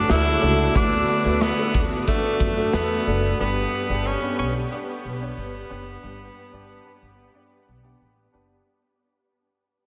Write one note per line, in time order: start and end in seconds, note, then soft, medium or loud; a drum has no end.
0.00 0.75 D3 medium
0.00 0.41 A3 medium
0.00 0.72 A3 medium
0.00 0.13 D4 loud
0.00 0.41 D4 medium
0.00 0.42 F#4 medium
0.00 3.35 F#4 medium
0.00 0.42 A4 medium
0.10 0.34 D2 medium
0.10 0.76 E4 loud
0.10 snare loud
0.26 closed hi-hat soft
0.41 0.67 C#2 medium
0.41 0.72 A3 medium
0.41 0.72 D4 medium
0.41 0.73 F#4 medium
0.41 0.73 A4 medium
0.41 closed hi-hat medium
0.59 closed hi-hat soft
0.74 1.00 D2 medium
0.74 1.70 D3 medium
0.74 1.21 A3 medium
0.74 3.36 B3 medium
0.74 1.21 D4 medium
0.74 1.43 D4 loud
0.74 1.21 F#4 medium
0.74 1.21 B4 medium
0.74 kick loud
0.74 closed hi-hat medium
0.92 closed hi-hat soft
1.08 closed hi-hat medium
1.25 1.50 D2 medium
1.25 1.55 A3 medium
1.25 1.55 D4 medium
1.25 1.56 F#4 medium
1.25 1.56 B4 medium
1.25 closed hi-hat soft
1.42 1.80 B3 medium
1.42 snare loud
1.57 2.03 A3 medium
1.57 2.04 D4 medium
1.57 2.04 F#4 medium
1.57 2.04 A4 medium
1.57 closed hi-hat soft
1.74 1.99 D2 medium
1.74 kick medium
1.74 closed hi-hat medium
1.91 closed hi-hat soft
2.07 2.53 A3 medium
2.07 2.76 A3 medium
2.07 2.53 D4 medium
2.07 2.53 F#4 medium
2.07 2.53 A4 medium
2.07 kick medium
2.07 closed hi-hat medium
2.24 closed hi-hat soft
2.40 2.65 F#2 medium
2.40 kick medium
2.40 closed hi-hat medium
2.56 3.02 A3 medium
2.56 3.02 D4 medium
2.56 3.03 F#4 medium
2.56 3.03 A4 medium
2.56 closed hi-hat soft
2.73 2.98 E2 medium
2.73 3.40 B3 medium
2.73 snare loud
2.89 closed hi-hat soft
3.06 3.31 F#1 medium
3.06 3.37 A3 medium
3.06 3.37 D4 medium
3.06 3.37 F#4 medium
3.06 3.37 A4 medium
3.06 closed hi-hat medium
3.23 closed hi-hat soft
3.39 3.64 G1 medium
3.39 4.34 G2 medium
3.39 8.63 B3 medium
3.39 3.85 B3 medium
3.39 4.08 B3 medium
3.39 3.85 D4 medium
3.39 8.63 G4 medium
3.39 3.85 G4 medium
3.39 3.86 B4 medium
3.89 4.14 G1 medium
3.89 4.19 B3 medium
3.89 4.19 D4 medium
3.89 4.20 G4 medium
3.89 4.20 A4 medium
4.06 4.39 C#4 medium
4.21 4.67 B3 medium
4.21 4.67 D4 medium
4.21 4.68 G4 medium
4.21 4.68 B4 medium
4.39 4.63 B1 medium
4.39 4.54 C#4 medium
4.71 5.17 B3 medium
4.71 7.97 B3 medium
4.71 5.17 D4 medium
4.71 5.17 G4 medium
4.71 5.17 D5 medium
5.05 5.29 B1 medium
5.20 5.66 B3 medium
5.20 5.66 D4 medium
5.20 5.67 G4 medium
5.20 5.67 C#5 medium
5.37 5.62 G1 medium
5.70 5.95 F#1 medium
5.70 6.00 B3 medium
5.70 6.00 D4 medium
5.70 6.01 G4 medium
5.70 6.01 B4 medium
6.03 6.28 G1 medium
6.03 6.98 G2 medium
6.03 6.49 B3 medium
6.03 6.49 D4 medium
6.03 6.49 G4 medium
6.03 6.49 B4 medium
6.52 6.77 G1 medium
6.52 6.83 B3 medium
6.52 6.83 D4 medium
6.52 6.83 G4 medium
6.52 6.83 D5 medium
6.84 7.31 B3 medium
6.84 7.31 D4 medium
6.84 7.31 G4 medium
6.84 7.31 B4 medium
7.02 7.27 G1 medium
7.34 7.80 B3 medium
7.34 7.80 D4 medium
7.34 7.80 G4 medium
7.34 7.81 D5 medium
7.68 7.93 B1 medium
7.84 8.30 B3 medium
7.84 8.30 D4 medium
7.84 8.30 G4 medium
7.84 8.30 D5 medium
8.01 8.26 A1 medium
8.33 8.59 F#1 medium
8.33 8.64 B3 medium
8.33 8.64 D4 medium
8.33 8.64 G4 medium
8.33 8.64 B4 medium